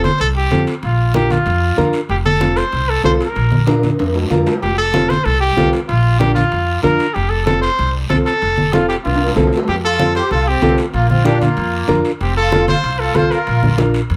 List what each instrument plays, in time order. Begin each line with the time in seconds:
Already playing: nylon-string guitar F4 A4
0.04 trumpet C5, high conga, high timbale, short guiro
0.20 upright bass C2, trumpet A4, high conga, high timbale, long guiro
0.37 trumpet G4
0.51 upright bass F2, nylon-string guitar C4 F4 A4, high conga, high timbale, short guiro
0.67 high timbale, short guiro
0.83 upright bass A#1, trumpet F4, high conga, high timbale, long guiro
1.14 nylon-string guitar D4 F4 A#4, trumpet G4, high conga, high timbale, short guiro
1.30 trumpet F4, high conga, high timbale, short guiro
1.46 upright bass F2, high conga, high timbale, long guiro
1.77 upright bass F2, nylon-string guitar D4 F4 A#4, high conga, high timbale, short guiro
1.93 high timbale, short guiro
2.09 upright bass F1, trumpet G4, high conga, high timbale, long guiro
2.25 trumpet A4, high conga
2.40 nylon-string guitar C4 F4 A4, high conga, high timbale, short guiro
2.56 trumpet C5, high timbale, short guiro
2.72 upright bass C2, high conga, high timbale, long guiro
2.89 trumpet A4
3.04 upright bass C2, nylon-string guitar C4 F4 A4, trumpet C5, high conga, high timbale, low timbale, short guiro
3.20 trumpet A#4, high timbale, short guiro
3.35 upright bass A#1, high conga, high timbale, long guiro
3.52 high conga
3.67 nylon-string guitar D4 F4 A#4, high conga, high timbale, short guiro
3.83 high conga, high timbale, short guiro
3.99 upright bass F2, high conga, high timbale, long guiro
4.15 low timbale
4.30 upright bass F2, nylon-string guitar D4 F4 A#4, high conga, low timbale, short guiro
4.47 low timbale, short guiro
4.62 upright bass F1, trumpet G4, high conga, high timbale, long guiro
4.78 trumpet A4
4.93 nylon-string guitar C4 F4 A4, high conga, high timbale, short guiro
5.10 trumpet C5, high conga, high timbale, short guiro
5.25 upright bass C2, trumpet A4, high conga, high timbale, long guiro
5.41 trumpet G4
5.57 upright bass C2, nylon-string guitar C4 F4 A4, high conga, high timbale, low timbale, short guiro
5.73 high timbale, short guiro
5.88 upright bass A#1, trumpet F4, high conga, high timbale, long guiro
6.20 nylon-string guitar D4 F4 A#4, trumpet G4, high conga, high timbale, short guiro
6.35 trumpet F4, high conga, high timbale, short guiro
6.52 upright bass F2, high conga, high timbale, long guiro
6.82 upright bass F2, nylon-string guitar D4 F4 A#4, trumpet A#4, high conga, high timbale, short guiro
6.99 high timbale, short guiro
7.14 upright bass F1, trumpet G4, high conga, high timbale, long guiro
7.29 trumpet A4
7.46 nylon-string guitar C4 F4 A4, trumpet A4, high conga, high timbale, short guiro
7.62 trumpet C5, high timbale, short guiro
7.79 upright bass C2, high conga, high timbale, long guiro
8.10 upright bass C2, nylon-string guitar C4 F4 A4, trumpet A4, high conga, high timbale, short guiro
8.26 trumpet A4, high timbale, short guiro
8.42 upright bass F1, high conga, high timbale, long guiro
8.57 high conga
8.73 nylon-string guitar C4 F4 A4, trumpet F4, high conga, high timbale, short guiro
8.88 trumpet G4, high timbale, short guiro
9.04 upright bass C2, trumpet F4, high conga, high timbale, long guiro
9.16 high timbale
9.26 low timbale
9.36 upright bass C2, nylon-string guitar C4 F4 A4, high conga, low timbale, short guiro
9.47 low timbale
9.52 short guiro
9.57 low timbale
9.68 upright bass F2, accordion C4, trumpet G4, high conga, high timbale, long guiro
9.85 accordion F4, trumpet A4
9.99 nylon-string guitar C4 F4 A4, high conga, high timbale, short guiro
10.15 accordion G4, trumpet C5, high timbale, short guiro
10.31 upright bass C2, accordion F4, trumpet A4, high conga, high timbale, long guiro
10.48 accordion C4, trumpet G4
10.62 upright bass C2, nylon-string guitar C4 F4 A4, high conga, high timbale, low timbale, short guiro
10.78 high timbale, short guiro
10.93 upright bass A#1, accordion A#3, trumpet F4, high conga, high timbale, long guiro
11.09 accordion C4, trumpet F4, high conga
11.25 nylon-string guitar D4 F4 A#4, accordion D4, trumpet G4, high conga, high timbale, short guiro
11.41 accordion A#3, trumpet F4, high conga, high timbale, short guiro
11.57 upright bass F2, high conga, high timbale, long guiro
11.88 upright bass F2, nylon-string guitar D4 F4 A#4, high conga, low conga, high timbale, short guiro
12.05 high timbale, short guiro
12.21 upright bass F1, accordion C4, trumpet G4, high conga, high timbale, long guiro
12.36 accordion F4, trumpet A4
12.52 nylon-string guitar C4 F4 A4, high conga, high timbale, short guiro
12.67 accordion F4, trumpet C5, high conga, high timbale, short guiro
12.83 upright bass C2, high conga, high timbale, long guiro
12.99 accordion F4, trumpet A4
13.14 upright bass C2, nylon-string guitar C4 F4 A4, accordion F4, trumpet C5, high conga, high timbale, short guiro
13.31 accordion F4, trumpet A#4, high timbale, short guiro
13.47 upright bass A#1, high conga, high timbale, long guiro
13.63 high conga, low conga
13.77 nylon-string guitar D4 F4 A#4, high conga, high timbale, short guiro
13.94 high timbale, short guiro
14.10 upright bass F2, high conga, high timbale, long guiro